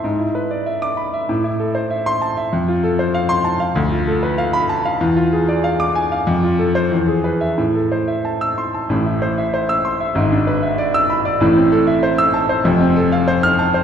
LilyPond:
\new Staff \with { instrumentName = "Grand piano" } { \time 2/4 \key a \minor \tempo 4 = 96 << { r4 r16 d'''8 r16 | r4 r16 c'''8 r16 | r4 r16 c'''8 r16 | r4 r16 b''8 r16 |
r4 r16 d'''8 r16 | r8. c''16 r8. e''16 | r4 r16 e'''8 r16 | r4 r16 e'''8 r16 |
r4 r16 e'''8 r16 | r4 r16 e'''8 r16 | r4 r16 f'''8 r16 | } \\ { gis,16 e'16 b'16 d''16 e''8 b''16 e''16 | a,16 e'16 a'16 c''16 e''8 a''16 e''16 | f,16 f'16 a'16 c''16 f''8 a''16 f''16 | d,16 f'16 a'16 b'16 f''8 a''16 f''16 |
e,16 f'16 gis'16 d''16 f''8 gis''16 f''16 | f,16 f'16 a'8 e,16 gis'16 b'8 | a,16 a'16 c''16 e''16 a''8 c'''16 a''16 | <a,, a,>16 e'16 c''16 e''16 c''8 c'''16 e''16 |
<gis,, gis,>16 d'16 b'16 e''16 d''8 b''16 d''16 | <a,, a,>16 c'16 a'16 e''16 c''8 a''16 c''16 | <f,, f,>16 c'16 a'16 f''16 c''8 a''16 c''16 | } >> }